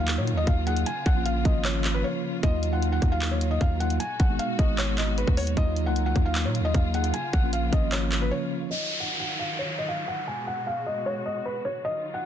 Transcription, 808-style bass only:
Already playing: D#2
0.18 A#2
0.32 D#2
0.47 D#2
1.06 A#1
1.45 G#1
2.43 D#2
3.02 D#2
3.61 D#2
4.20 G#1
4.59 G#1
5.28 D#2
5.57 D#2
5.86 C#2
6.16 D#2
6.45 A#2
6.60 D#2
6.74 D#2
7.33 A#1
7.73 G#1

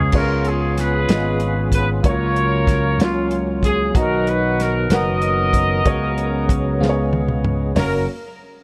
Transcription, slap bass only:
0.13 C#2
1.09 G#1
2.04 C#2
2.99 C#2
3.95 B1
4.90 F#1
5.86 C#2
6.80 C#2
7.77 F#1

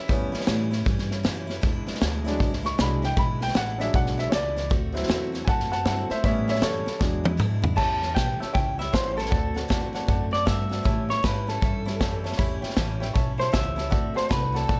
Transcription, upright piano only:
0.09 G3 B3 C#4
2.26 F#3 G#3 D4
2.66 C#6
2.79 F#3 G#3 D4 B5
3.05 G5
3.19 B5
3.43 G5
3.57 F#5
3.78 F#3 G#3 D4 E5
3.95 F#5
4.19 E5
4.29 C#5 D5
4.94 F#3 C4 E4
5.45 F#5 G#5
5.49 A5
5.72 F#5 A5
5.85 F#3 C4 E4 F#5 A5
6.11 C5 E5
6.22 G3 B3 C#4 C#5 E5
6.49 C#5 E5
6.62 A4 C#5
6.99 F#3 G#3 D4
7.77 C#5 E5 A5
8.01 C#5 E5 A5
8.16 C#5 E5 A5
8.40 C#5 E5 A5
8.53 C#5 E5 A5
8.78 C#5 E5 B5
8.92 C#5 E5 F#5
9.16 C#5 E5 A5
9.30 D5 F#5 A5
9.56 D5 F#5 A5
9.70 D5 F#5 A5
9.94 D5 F#5 A5
10.08 D5 F#5 A5
10.33 D5 F#5 A5
10.47 D5 F#5 A5
10.71 D5 F#5 A5
10.85 C#5 E5 A5
11.09 C#5 E5 B5
11.24 C#5 E5 A5
11.47 C#5 E5 A5
11.62 C#5 E5 A5
11.86 C#5 E5 A5
12.00 C#5 E5 A5
12.24 C#5 E5 A5
12.37 C#5 E5 B5
12.61 C#5 E5 G5
12.75 C#5 E5 A5
13.00 C#5 E5 G5
13.13 C#5 E5 A5
13.38 C#5 E5 A5
13.52 C#5 E5 A5
13.76 C#5 E5 A5
13.90 D5 F#5 A5
14.14 D5 F#5 A5
14.29 D5 F#5 A5
14.54 D5 F#5 A5
14.68 D5 F#5 A5

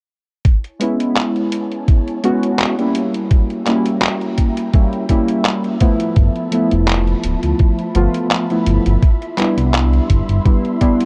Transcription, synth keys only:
0.79 G#3 B3 C#4 E4
2.23 G#3 B3 C#4 F#4
2.78 G3 A#3 C#4 E4
3.65 G3 A#3 C#4 E4
4.73 G3 A#3 C#4 E4
5.09 G3 A#3 C#4 E4
5.80 F3 A3 B3 E4
6.51 F3 A3 B3 E4
7.95 F3 A3 B3 F4
8.50 F3 A3 B3 E4
9.37 G3 B3 D4 E4
10.44 G3 B3 D4 E4
10.80 G3 B3 D4 E4

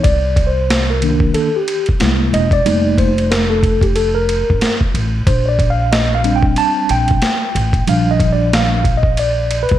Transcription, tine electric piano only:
0.04 D5
0.47 C5
0.90 A#4
1.02 D#3 A#3 D4
1.34 A4
1.56 G4
2.00 G#3 A#3 E4
2.34 D#5
2.53 D5
2.65 G3 A#3 D#4
2.99 C5
3.31 A#4
3.50 A4
3.83 G4
3.96 A4
4.15 A#4
5.27 C5
5.46 C#5 D5
5.70 F5
5.92 D#5
6.15 F5
6.24 G3 C4 D4
6.36 G5
6.58 A5
6.91 G5
7.87 F3 G3 D4 F5
8.11 D#5
8.33 D5
8.54 F5
8.97 D#5
9.19 D5
9.63 B4

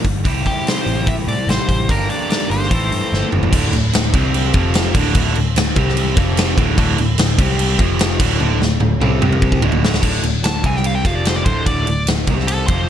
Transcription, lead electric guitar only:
0.47 G4
0.68 C5
1.08 E5
1.28 D5
1.50 C5
1.90 A#4
2.09 D5
2.31 D5
2.51 C5
10.44 A5
10.66 G#5
10.77 G5
10.86 F5
10.95 G5
11.05 F5
11.15 D5
11.26 C5
11.36 D5
11.45 C5
11.66 D5
12.47 A4
12.67 C5

